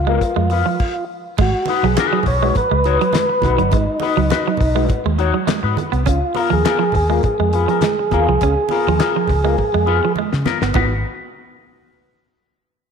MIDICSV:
0, 0, Header, 1, 8, 480
1, 0, Start_track
1, 0, Tempo, 584795
1, 1138, Time_signature, 4, 2, 24, 8
1, 10599, End_track
2, 0, Start_track
2, 0, Title_t, "Tonewheel organ"
2, 0, Program_c, 0, 16
2, 0, Note_on_c, 0, 65, 81
2, 857, Note_off_c, 0, 65, 0
2, 1159, Note_on_c, 0, 66, 90
2, 1519, Note_on_c, 0, 68, 81
2, 1527, Note_off_c, 0, 66, 0
2, 1841, Note_off_c, 0, 68, 0
2, 1867, Note_on_c, 0, 73, 109
2, 2039, Note_off_c, 0, 73, 0
2, 2049, Note_on_c, 0, 73, 69
2, 2101, Note_off_c, 0, 73, 0
2, 2111, Note_on_c, 0, 71, 118
2, 3065, Note_on_c, 0, 63, 89
2, 3095, Note_off_c, 0, 71, 0
2, 3991, Note_off_c, 0, 63, 0
2, 4997, Note_on_c, 0, 65, 87
2, 5332, Note_off_c, 0, 65, 0
2, 5358, Note_on_c, 0, 68, 114
2, 5703, Note_off_c, 0, 68, 0
2, 5713, Note_on_c, 0, 68, 111
2, 8314, Note_off_c, 0, 68, 0
2, 10599, End_track
3, 0, Start_track
3, 0, Title_t, "Clean electric guitar"
3, 0, Program_c, 1, 27
3, 73, Note_on_c, 1, 70, 89
3, 76, Note_on_c, 1, 65, 78
3, 84, Note_on_c, 1, 59, 73
3, 186, Note_off_c, 1, 59, 0
3, 188, Note_off_c, 1, 65, 0
3, 194, Note_off_c, 1, 70, 0
3, 422, Note_on_c, 1, 59, 67
3, 427, Note_on_c, 1, 65, 75
3, 435, Note_on_c, 1, 71, 77
3, 531, Note_off_c, 1, 59, 0
3, 534, Note_off_c, 1, 65, 0
3, 538, Note_off_c, 1, 71, 0
3, 1387, Note_on_c, 1, 63, 83
3, 1390, Note_on_c, 1, 66, 80
3, 1396, Note_on_c, 1, 71, 91
3, 1524, Note_off_c, 1, 63, 0
3, 1526, Note_off_c, 1, 66, 0
3, 1529, Note_off_c, 1, 71, 0
3, 1631, Note_on_c, 1, 63, 89
3, 1634, Note_on_c, 1, 66, 94
3, 1641, Note_on_c, 1, 71, 100
3, 1794, Note_off_c, 1, 63, 0
3, 1796, Note_off_c, 1, 66, 0
3, 1799, Note_off_c, 1, 71, 0
3, 1993, Note_on_c, 1, 71, 62
3, 2003, Note_on_c, 1, 66, 59
3, 2006, Note_on_c, 1, 63, 46
3, 2089, Note_off_c, 1, 71, 0
3, 2094, Note_off_c, 1, 66, 0
3, 2096, Note_off_c, 1, 63, 0
3, 2342, Note_on_c, 1, 63, 96
3, 2347, Note_on_c, 1, 66, 107
3, 2353, Note_on_c, 1, 73, 108
3, 2465, Note_off_c, 1, 73, 0
3, 2468, Note_off_c, 1, 66, 0
3, 2483, Note_off_c, 1, 63, 0
3, 2824, Note_on_c, 1, 63, 92
3, 2826, Note_on_c, 1, 66, 85
3, 2831, Note_on_c, 1, 71, 90
3, 2941, Note_off_c, 1, 71, 0
3, 2947, Note_off_c, 1, 66, 0
3, 2964, Note_off_c, 1, 63, 0
3, 3293, Note_on_c, 1, 63, 79
3, 3298, Note_on_c, 1, 66, 84
3, 3306, Note_on_c, 1, 71, 97
3, 3439, Note_off_c, 1, 63, 0
3, 3441, Note_off_c, 1, 66, 0
3, 3445, Note_off_c, 1, 71, 0
3, 3534, Note_on_c, 1, 63, 81
3, 3540, Note_on_c, 1, 66, 80
3, 3544, Note_on_c, 1, 71, 95
3, 3679, Note_off_c, 1, 63, 0
3, 3682, Note_off_c, 1, 66, 0
3, 3684, Note_off_c, 1, 71, 0
3, 3900, Note_on_c, 1, 71, 61
3, 3909, Note_on_c, 1, 66, 62
3, 3915, Note_on_c, 1, 63, 56
3, 4004, Note_off_c, 1, 71, 0
3, 4009, Note_off_c, 1, 66, 0
3, 4011, Note_off_c, 1, 63, 0
3, 4257, Note_on_c, 1, 63, 94
3, 4264, Note_on_c, 1, 66, 104
3, 4271, Note_on_c, 1, 73, 97
3, 4387, Note_off_c, 1, 66, 0
3, 4387, Note_off_c, 1, 73, 0
3, 4401, Note_off_c, 1, 63, 0
3, 4626, Note_on_c, 1, 71, 79
3, 4629, Note_on_c, 1, 66, 71
3, 4639, Note_on_c, 1, 63, 58
3, 4734, Note_off_c, 1, 63, 0
3, 4739, Note_off_c, 1, 66, 0
3, 4744, Note_off_c, 1, 71, 0
3, 5215, Note_on_c, 1, 59, 89
3, 5221, Note_on_c, 1, 65, 90
3, 5225, Note_on_c, 1, 70, 91
3, 5361, Note_off_c, 1, 59, 0
3, 5364, Note_off_c, 1, 65, 0
3, 5365, Note_off_c, 1, 70, 0
3, 5455, Note_on_c, 1, 59, 96
3, 5465, Note_on_c, 1, 65, 86
3, 5471, Note_on_c, 1, 70, 93
3, 5601, Note_off_c, 1, 59, 0
3, 5606, Note_off_c, 1, 65, 0
3, 5608, Note_off_c, 1, 70, 0
3, 5825, Note_on_c, 1, 70, 65
3, 5831, Note_on_c, 1, 65, 66
3, 5837, Note_on_c, 1, 59, 53
3, 5927, Note_off_c, 1, 70, 0
3, 5930, Note_off_c, 1, 65, 0
3, 5933, Note_off_c, 1, 59, 0
3, 6189, Note_on_c, 1, 59, 70
3, 6197, Note_on_c, 1, 65, 74
3, 6201, Note_on_c, 1, 71, 72
3, 6298, Note_off_c, 1, 59, 0
3, 6302, Note_off_c, 1, 65, 0
3, 6304, Note_off_c, 1, 71, 0
3, 6322, Note_on_c, 1, 70, 71
3, 6324, Note_on_c, 1, 65, 58
3, 6332, Note_on_c, 1, 59, 53
3, 6416, Note_off_c, 1, 70, 0
3, 6417, Note_off_c, 1, 65, 0
3, 6421, Note_off_c, 1, 59, 0
3, 6665, Note_on_c, 1, 59, 86
3, 6676, Note_on_c, 1, 65, 92
3, 6677, Note_on_c, 1, 70, 80
3, 6785, Note_off_c, 1, 70, 0
3, 6794, Note_off_c, 1, 65, 0
3, 6806, Note_off_c, 1, 59, 0
3, 7145, Note_on_c, 1, 59, 80
3, 7148, Note_on_c, 1, 65, 88
3, 7157, Note_on_c, 1, 70, 94
3, 7286, Note_off_c, 1, 59, 0
3, 7287, Note_off_c, 1, 65, 0
3, 7292, Note_off_c, 1, 70, 0
3, 7381, Note_on_c, 1, 59, 85
3, 7389, Note_on_c, 1, 65, 86
3, 7392, Note_on_c, 1, 70, 90
3, 7523, Note_off_c, 1, 59, 0
3, 7527, Note_off_c, 1, 65, 0
3, 7529, Note_off_c, 1, 70, 0
3, 7748, Note_on_c, 1, 70, 68
3, 7756, Note_on_c, 1, 65, 63
3, 7761, Note_on_c, 1, 59, 54
3, 7849, Note_off_c, 1, 70, 0
3, 7852, Note_off_c, 1, 65, 0
3, 7855, Note_off_c, 1, 59, 0
3, 8096, Note_on_c, 1, 59, 89
3, 8103, Note_on_c, 1, 65, 89
3, 8107, Note_on_c, 1, 71, 99
3, 8221, Note_off_c, 1, 71, 0
3, 8226, Note_off_c, 1, 65, 0
3, 8241, Note_off_c, 1, 59, 0
3, 8581, Note_on_c, 1, 59, 86
3, 8585, Note_on_c, 1, 65, 77
3, 8594, Note_on_c, 1, 70, 89
3, 8695, Note_off_c, 1, 70, 0
3, 8703, Note_off_c, 1, 65, 0
3, 8723, Note_off_c, 1, 59, 0
3, 8814, Note_on_c, 1, 63, 77
3, 8820, Note_on_c, 1, 66, 84
3, 8825, Note_on_c, 1, 71, 81
3, 8967, Note_off_c, 1, 63, 0
3, 8970, Note_off_c, 1, 66, 0
3, 8973, Note_off_c, 1, 71, 0
3, 10599, End_track
4, 0, Start_track
4, 0, Title_t, "Clean electric guitar"
4, 0, Program_c, 2, 27
4, 57, Note_on_c, 2, 56, 75
4, 143, Note_off_c, 2, 56, 0
4, 298, Note_on_c, 2, 56, 82
4, 383, Note_off_c, 2, 56, 0
4, 539, Note_on_c, 2, 53, 63
4, 624, Note_off_c, 2, 53, 0
4, 1137, Note_on_c, 2, 56, 96
4, 1231, Note_off_c, 2, 56, 0
4, 1510, Note_on_c, 2, 54, 95
4, 1591, Note_off_c, 2, 54, 0
4, 1746, Note_on_c, 2, 54, 83
4, 1829, Note_off_c, 2, 54, 0
4, 1991, Note_on_c, 2, 56, 81
4, 2072, Note_off_c, 2, 56, 0
4, 2228, Note_on_c, 2, 56, 73
4, 2311, Note_off_c, 2, 56, 0
4, 2474, Note_on_c, 2, 54, 77
4, 2555, Note_off_c, 2, 54, 0
4, 2571, Note_on_c, 2, 56, 79
4, 2668, Note_off_c, 2, 56, 0
4, 2942, Note_on_c, 2, 54, 75
4, 3027, Note_off_c, 2, 54, 0
4, 3060, Note_on_c, 2, 56, 87
4, 3154, Note_off_c, 2, 56, 0
4, 3424, Note_on_c, 2, 54, 95
4, 3509, Note_off_c, 2, 54, 0
4, 3673, Note_on_c, 2, 54, 79
4, 3755, Note_off_c, 2, 54, 0
4, 3905, Note_on_c, 2, 56, 83
4, 3990, Note_off_c, 2, 56, 0
4, 4152, Note_on_c, 2, 56, 77
4, 4234, Note_off_c, 2, 56, 0
4, 4383, Note_on_c, 2, 54, 65
4, 4469, Note_off_c, 2, 54, 0
4, 4492, Note_on_c, 2, 56, 78
4, 4590, Note_off_c, 2, 56, 0
4, 4860, Note_on_c, 2, 59, 70
4, 4947, Note_off_c, 2, 59, 0
4, 4976, Note_on_c, 2, 61, 84
4, 5072, Note_off_c, 2, 61, 0
4, 5336, Note_on_c, 2, 53, 90
4, 5425, Note_off_c, 2, 53, 0
4, 5572, Note_on_c, 2, 53, 82
4, 5662, Note_off_c, 2, 53, 0
4, 5825, Note_on_c, 2, 56, 70
4, 5910, Note_off_c, 2, 56, 0
4, 6073, Note_on_c, 2, 56, 75
4, 6155, Note_off_c, 2, 56, 0
4, 6306, Note_on_c, 2, 53, 70
4, 6391, Note_off_c, 2, 53, 0
4, 6433, Note_on_c, 2, 56, 85
4, 6523, Note_off_c, 2, 56, 0
4, 6802, Note_on_c, 2, 53, 67
4, 6881, Note_off_c, 2, 53, 0
4, 6920, Note_on_c, 2, 61, 83
4, 7008, Note_off_c, 2, 61, 0
4, 7292, Note_on_c, 2, 53, 103
4, 7367, Note_off_c, 2, 53, 0
4, 7521, Note_on_c, 2, 53, 80
4, 7600, Note_off_c, 2, 53, 0
4, 7753, Note_on_c, 2, 56, 82
4, 7835, Note_off_c, 2, 56, 0
4, 7997, Note_on_c, 2, 56, 75
4, 8077, Note_off_c, 2, 56, 0
4, 8246, Note_on_c, 2, 53, 70
4, 8323, Note_off_c, 2, 53, 0
4, 8360, Note_on_c, 2, 56, 82
4, 8447, Note_off_c, 2, 56, 0
4, 8723, Note_on_c, 2, 59, 65
4, 8801, Note_off_c, 2, 59, 0
4, 8834, Note_on_c, 2, 59, 92
4, 8974, Note_off_c, 2, 59, 0
4, 10599, End_track
5, 0, Start_track
5, 0, Title_t, "Fingered electric bass"
5, 0, Program_c, 3, 33
5, 0, Note_on_c, 3, 37, 90
5, 141, Note_off_c, 3, 37, 0
5, 300, Note_on_c, 3, 41, 95
5, 507, Note_off_c, 3, 41, 0
5, 1140, Note_on_c, 3, 32, 110
5, 1248, Note_off_c, 3, 32, 0
5, 1502, Note_on_c, 3, 35, 85
5, 1600, Note_off_c, 3, 35, 0
5, 1858, Note_on_c, 3, 35, 88
5, 2064, Note_off_c, 3, 35, 0
5, 2229, Note_on_c, 3, 37, 91
5, 2433, Note_off_c, 3, 37, 0
5, 2817, Note_on_c, 3, 35, 85
5, 2927, Note_off_c, 3, 35, 0
5, 2943, Note_on_c, 3, 31, 89
5, 3061, Note_off_c, 3, 31, 0
5, 3061, Note_on_c, 3, 32, 107
5, 3170, Note_off_c, 3, 32, 0
5, 3424, Note_on_c, 3, 37, 79
5, 3522, Note_off_c, 3, 37, 0
5, 3782, Note_on_c, 3, 35, 105
5, 3987, Note_off_c, 3, 35, 0
5, 4149, Note_on_c, 3, 39, 85
5, 4354, Note_off_c, 3, 39, 0
5, 4624, Note_on_c, 3, 44, 89
5, 4723, Note_off_c, 3, 44, 0
5, 4864, Note_on_c, 3, 36, 85
5, 4982, Note_off_c, 3, 36, 0
5, 4982, Note_on_c, 3, 37, 120
5, 5091, Note_off_c, 3, 37, 0
5, 5349, Note_on_c, 3, 39, 97
5, 5446, Note_off_c, 3, 39, 0
5, 5700, Note_on_c, 3, 39, 88
5, 5906, Note_off_c, 3, 39, 0
5, 6071, Note_on_c, 3, 41, 86
5, 6276, Note_off_c, 3, 41, 0
5, 6663, Note_on_c, 3, 39, 82
5, 6772, Note_off_c, 3, 39, 0
5, 6797, Note_on_c, 3, 36, 85
5, 6890, Note_off_c, 3, 36, 0
5, 6905, Note_on_c, 3, 37, 100
5, 7013, Note_off_c, 3, 37, 0
5, 7284, Note_on_c, 3, 39, 94
5, 7374, Note_off_c, 3, 39, 0
5, 7630, Note_on_c, 3, 37, 90
5, 7832, Note_off_c, 3, 37, 0
5, 7997, Note_on_c, 3, 41, 88
5, 8199, Note_off_c, 3, 41, 0
5, 8480, Note_on_c, 3, 49, 104
5, 8572, Note_off_c, 3, 49, 0
5, 8711, Note_on_c, 3, 31, 92
5, 8806, Note_off_c, 3, 31, 0
5, 8825, Note_on_c, 3, 32, 104
5, 9046, Note_off_c, 3, 32, 0
5, 10599, End_track
6, 0, Start_track
6, 0, Title_t, "Muted clean electric guitar strokes"
6, 196, Note_on_c, 9, 29, 48
6, 278, Note_off_c, 9, 29, 0
6, 410, Note_on_c, 9, 29, 40
6, 492, Note_off_c, 9, 29, 0
6, 563, Note_on_c, 9, 29, 53
6, 645, Note_off_c, 9, 29, 0
6, 1379, Note_on_c, 9, 29, 41
6, 1461, Note_off_c, 9, 29, 0
6, 1873, Note_on_c, 9, 29, 43
6, 1955, Note_off_c, 9, 29, 0
6, 2104, Note_on_c, 9, 29, 40
6, 2186, Note_off_c, 9, 29, 0
6, 2235, Note_on_c, 9, 29, 56
6, 2317, Note_off_c, 9, 29, 0
6, 2348, Note_on_c, 9, 29, 44
6, 2430, Note_off_c, 9, 29, 0
6, 2468, Note_on_c, 9, 29, 40
6, 2550, Note_off_c, 9, 29, 0
6, 2592, Note_on_c, 9, 29, 45
6, 2674, Note_off_c, 9, 29, 0
6, 2720, Note_on_c, 9, 29, 41
6, 2802, Note_off_c, 9, 29, 0
6, 2950, Note_on_c, 9, 29, 42
6, 3033, Note_off_c, 9, 29, 0
6, 3306, Note_on_c, 9, 29, 40
6, 3388, Note_off_c, 9, 29, 0
6, 3781, Note_on_c, 9, 29, 46
6, 3863, Note_off_c, 9, 29, 0
6, 4028, Note_on_c, 9, 29, 55
6, 4110, Note_off_c, 9, 29, 0
6, 4144, Note_on_c, 9, 29, 55
6, 4226, Note_off_c, 9, 29, 0
6, 4256, Note_on_c, 9, 29, 46
6, 4338, Note_off_c, 9, 29, 0
6, 4390, Note_on_c, 9, 29, 55
6, 4472, Note_off_c, 9, 29, 0
6, 4497, Note_on_c, 9, 29, 44
6, 4579, Note_off_c, 9, 29, 0
6, 4620, Note_on_c, 9, 29, 42
6, 4703, Note_off_c, 9, 29, 0
6, 4744, Note_on_c, 9, 29, 38
6, 4826, Note_off_c, 9, 29, 0
6, 4869, Note_on_c, 9, 29, 41
6, 4951, Note_off_c, 9, 29, 0
6, 5214, Note_on_c, 9, 29, 41
6, 5296, Note_off_c, 9, 29, 0
6, 5698, Note_on_c, 9, 29, 41
6, 5780, Note_off_c, 9, 29, 0
6, 5955, Note_on_c, 9, 29, 37
6, 6037, Note_off_c, 9, 29, 0
6, 6071, Note_on_c, 9, 29, 46
6, 6154, Note_off_c, 9, 29, 0
6, 6185, Note_on_c, 9, 29, 42
6, 6267, Note_off_c, 9, 29, 0
6, 6449, Note_on_c, 9, 29, 45
6, 6531, Note_off_c, 9, 29, 0
6, 6557, Note_on_c, 9, 29, 36
6, 6639, Note_off_c, 9, 29, 0
6, 6795, Note_on_c, 9, 29, 39
6, 6877, Note_off_c, 9, 29, 0
6, 7154, Note_on_c, 9, 29, 40
6, 7236, Note_off_c, 9, 29, 0
6, 7627, Note_on_c, 9, 29, 43
6, 7709, Note_off_c, 9, 29, 0
6, 7865, Note_on_c, 9, 29, 51
6, 7947, Note_off_c, 9, 29, 0
6, 7985, Note_on_c, 9, 29, 50
6, 8067, Note_off_c, 9, 29, 0
6, 8114, Note_on_c, 9, 29, 42
6, 8196, Note_off_c, 9, 29, 0
6, 8224, Note_on_c, 9, 29, 44
6, 8306, Note_off_c, 9, 29, 0
6, 8348, Note_on_c, 9, 29, 48
6, 8430, Note_off_c, 9, 29, 0
6, 8475, Note_on_c, 9, 29, 47
6, 8557, Note_off_c, 9, 29, 0
6, 8705, Note_on_c, 9, 29, 46
6, 8787, Note_off_c, 9, 29, 0
6, 10599, End_track
7, 0, Start_track
7, 0, Title_t, "Muted fingered electric bass strokes"
7, 2099, Note_on_c, 9, 29, 48
7, 2181, Note_off_c, 9, 29, 0
7, 10599, End_track
8, 0, Start_track
8, 0, Title_t, "Drums"
8, 174, Note_on_c, 9, 36, 85
8, 176, Note_on_c, 9, 42, 83
8, 256, Note_off_c, 9, 36, 0
8, 258, Note_off_c, 9, 42, 0
8, 409, Note_on_c, 9, 62, 37
8, 414, Note_on_c, 9, 46, 63
8, 492, Note_off_c, 9, 62, 0
8, 496, Note_off_c, 9, 46, 0
8, 654, Note_on_c, 9, 49, 90
8, 656, Note_on_c, 9, 36, 112
8, 736, Note_off_c, 9, 49, 0
8, 739, Note_off_c, 9, 36, 0
8, 1133, Note_on_c, 9, 62, 59
8, 1138, Note_on_c, 9, 36, 127
8, 1138, Note_on_c, 9, 49, 101
8, 1215, Note_off_c, 9, 62, 0
8, 1220, Note_off_c, 9, 36, 0
8, 1220, Note_off_c, 9, 49, 0
8, 1358, Note_on_c, 9, 62, 60
8, 1379, Note_on_c, 9, 46, 78
8, 1440, Note_off_c, 9, 62, 0
8, 1461, Note_off_c, 9, 46, 0
8, 1615, Note_on_c, 9, 63, 86
8, 1621, Note_on_c, 9, 42, 102
8, 1622, Note_on_c, 9, 38, 108
8, 1622, Note_on_c, 9, 39, 97
8, 1697, Note_off_c, 9, 63, 0
8, 1703, Note_off_c, 9, 42, 0
8, 1704, Note_off_c, 9, 38, 0
8, 1704, Note_off_c, 9, 39, 0
8, 1831, Note_on_c, 9, 64, 94
8, 1855, Note_on_c, 9, 46, 70
8, 1857, Note_on_c, 9, 36, 84
8, 1913, Note_off_c, 9, 64, 0
8, 1937, Note_off_c, 9, 46, 0
8, 1940, Note_off_c, 9, 36, 0
8, 2093, Note_on_c, 9, 64, 85
8, 2099, Note_on_c, 9, 36, 87
8, 2100, Note_on_c, 9, 42, 86
8, 2175, Note_off_c, 9, 64, 0
8, 2181, Note_off_c, 9, 36, 0
8, 2183, Note_off_c, 9, 42, 0
8, 2333, Note_on_c, 9, 62, 35
8, 2341, Note_on_c, 9, 42, 66
8, 2415, Note_off_c, 9, 62, 0
8, 2423, Note_off_c, 9, 42, 0
8, 2471, Note_on_c, 9, 42, 50
8, 2553, Note_off_c, 9, 42, 0
8, 2565, Note_on_c, 9, 63, 72
8, 2580, Note_on_c, 9, 42, 116
8, 2587, Note_on_c, 9, 38, 99
8, 2587, Note_on_c, 9, 39, 84
8, 2647, Note_off_c, 9, 63, 0
8, 2662, Note_off_c, 9, 42, 0
8, 2669, Note_off_c, 9, 38, 0
8, 2669, Note_off_c, 9, 39, 0
8, 2805, Note_on_c, 9, 63, 89
8, 2819, Note_on_c, 9, 36, 102
8, 2826, Note_on_c, 9, 42, 73
8, 2887, Note_off_c, 9, 63, 0
8, 2901, Note_off_c, 9, 36, 0
8, 2908, Note_off_c, 9, 42, 0
8, 2945, Note_on_c, 9, 42, 49
8, 3027, Note_off_c, 9, 42, 0
8, 3049, Note_on_c, 9, 62, 57
8, 3057, Note_on_c, 9, 42, 107
8, 3060, Note_on_c, 9, 36, 112
8, 3131, Note_off_c, 9, 62, 0
8, 3139, Note_off_c, 9, 42, 0
8, 3142, Note_off_c, 9, 36, 0
8, 3280, Note_on_c, 9, 62, 59
8, 3299, Note_on_c, 9, 46, 77
8, 3362, Note_off_c, 9, 62, 0
8, 3381, Note_off_c, 9, 46, 0
8, 3532, Note_on_c, 9, 63, 81
8, 3544, Note_on_c, 9, 42, 87
8, 3545, Note_on_c, 9, 38, 122
8, 3545, Note_on_c, 9, 39, 93
8, 3614, Note_off_c, 9, 63, 0
8, 3626, Note_off_c, 9, 42, 0
8, 3627, Note_off_c, 9, 38, 0
8, 3627, Note_off_c, 9, 39, 0
8, 3752, Note_on_c, 9, 64, 83
8, 3780, Note_on_c, 9, 36, 94
8, 3783, Note_on_c, 9, 46, 70
8, 3835, Note_off_c, 9, 64, 0
8, 3862, Note_off_c, 9, 36, 0
8, 3865, Note_off_c, 9, 46, 0
8, 4011, Note_on_c, 9, 64, 82
8, 4019, Note_on_c, 9, 36, 101
8, 4019, Note_on_c, 9, 42, 92
8, 4093, Note_off_c, 9, 64, 0
8, 4101, Note_off_c, 9, 36, 0
8, 4101, Note_off_c, 9, 42, 0
8, 4257, Note_on_c, 9, 42, 71
8, 4339, Note_off_c, 9, 42, 0
8, 4493, Note_on_c, 9, 63, 71
8, 4495, Note_on_c, 9, 42, 106
8, 4503, Note_on_c, 9, 38, 106
8, 4503, Note_on_c, 9, 39, 98
8, 4575, Note_off_c, 9, 63, 0
8, 4577, Note_off_c, 9, 42, 0
8, 4585, Note_off_c, 9, 38, 0
8, 4585, Note_off_c, 9, 39, 0
8, 4735, Note_on_c, 9, 63, 91
8, 4746, Note_on_c, 9, 42, 71
8, 4818, Note_off_c, 9, 63, 0
8, 4828, Note_off_c, 9, 42, 0
8, 4868, Note_on_c, 9, 42, 50
8, 4950, Note_off_c, 9, 42, 0
8, 4973, Note_on_c, 9, 62, 60
8, 4982, Note_on_c, 9, 36, 118
8, 4983, Note_on_c, 9, 42, 112
8, 5055, Note_off_c, 9, 62, 0
8, 5064, Note_off_c, 9, 36, 0
8, 5065, Note_off_c, 9, 42, 0
8, 5208, Note_on_c, 9, 62, 61
8, 5222, Note_on_c, 9, 46, 69
8, 5290, Note_off_c, 9, 62, 0
8, 5305, Note_off_c, 9, 46, 0
8, 5462, Note_on_c, 9, 42, 92
8, 5462, Note_on_c, 9, 63, 73
8, 5463, Note_on_c, 9, 38, 114
8, 5463, Note_on_c, 9, 39, 83
8, 5544, Note_off_c, 9, 42, 0
8, 5544, Note_off_c, 9, 63, 0
8, 5545, Note_off_c, 9, 38, 0
8, 5545, Note_off_c, 9, 39, 0
8, 5680, Note_on_c, 9, 64, 89
8, 5701, Note_on_c, 9, 46, 67
8, 5702, Note_on_c, 9, 36, 85
8, 5762, Note_off_c, 9, 64, 0
8, 5783, Note_off_c, 9, 46, 0
8, 5784, Note_off_c, 9, 36, 0
8, 5935, Note_on_c, 9, 64, 75
8, 5941, Note_on_c, 9, 36, 104
8, 5942, Note_on_c, 9, 42, 83
8, 6017, Note_off_c, 9, 64, 0
8, 6024, Note_off_c, 9, 36, 0
8, 6024, Note_off_c, 9, 42, 0
8, 6179, Note_on_c, 9, 42, 69
8, 6261, Note_off_c, 9, 42, 0
8, 6310, Note_on_c, 9, 42, 48
8, 6392, Note_off_c, 9, 42, 0
8, 6411, Note_on_c, 9, 63, 67
8, 6415, Note_on_c, 9, 42, 110
8, 6423, Note_on_c, 9, 38, 110
8, 6423, Note_on_c, 9, 39, 91
8, 6493, Note_off_c, 9, 63, 0
8, 6497, Note_off_c, 9, 42, 0
8, 6505, Note_off_c, 9, 38, 0
8, 6505, Note_off_c, 9, 39, 0
8, 6660, Note_on_c, 9, 63, 91
8, 6663, Note_on_c, 9, 36, 92
8, 6668, Note_on_c, 9, 42, 73
8, 6742, Note_off_c, 9, 63, 0
8, 6745, Note_off_c, 9, 36, 0
8, 6750, Note_off_c, 9, 42, 0
8, 6903, Note_on_c, 9, 62, 56
8, 6907, Note_on_c, 9, 42, 99
8, 6908, Note_on_c, 9, 36, 110
8, 6985, Note_off_c, 9, 62, 0
8, 6990, Note_off_c, 9, 36, 0
8, 6990, Note_off_c, 9, 42, 0
8, 7130, Note_on_c, 9, 62, 58
8, 7149, Note_on_c, 9, 46, 79
8, 7212, Note_off_c, 9, 62, 0
8, 7231, Note_off_c, 9, 46, 0
8, 7385, Note_on_c, 9, 63, 69
8, 7388, Note_on_c, 9, 42, 89
8, 7389, Note_on_c, 9, 38, 112
8, 7389, Note_on_c, 9, 39, 92
8, 7467, Note_off_c, 9, 63, 0
8, 7470, Note_off_c, 9, 42, 0
8, 7471, Note_off_c, 9, 38, 0
8, 7471, Note_off_c, 9, 39, 0
8, 7612, Note_on_c, 9, 64, 85
8, 7628, Note_on_c, 9, 36, 86
8, 7631, Note_on_c, 9, 46, 61
8, 7694, Note_off_c, 9, 64, 0
8, 7711, Note_off_c, 9, 36, 0
8, 7713, Note_off_c, 9, 46, 0
8, 7864, Note_on_c, 9, 64, 78
8, 7868, Note_on_c, 9, 36, 85
8, 7946, Note_off_c, 9, 64, 0
8, 7950, Note_off_c, 9, 36, 0
8, 8103, Note_on_c, 9, 62, 33
8, 8185, Note_off_c, 9, 62, 0
8, 8337, Note_on_c, 9, 63, 69
8, 8419, Note_off_c, 9, 63, 0
8, 8476, Note_on_c, 9, 38, 66
8, 8558, Note_off_c, 9, 38, 0
8, 8583, Note_on_c, 9, 63, 83
8, 8585, Note_on_c, 9, 38, 105
8, 8665, Note_off_c, 9, 63, 0
8, 8668, Note_off_c, 9, 38, 0
8, 8715, Note_on_c, 9, 38, 95
8, 8797, Note_off_c, 9, 38, 0
8, 8816, Note_on_c, 9, 62, 88
8, 8826, Note_on_c, 9, 36, 98
8, 8826, Note_on_c, 9, 43, 102
8, 8898, Note_off_c, 9, 62, 0
8, 8908, Note_off_c, 9, 36, 0
8, 8908, Note_off_c, 9, 43, 0
8, 10599, End_track
0, 0, End_of_file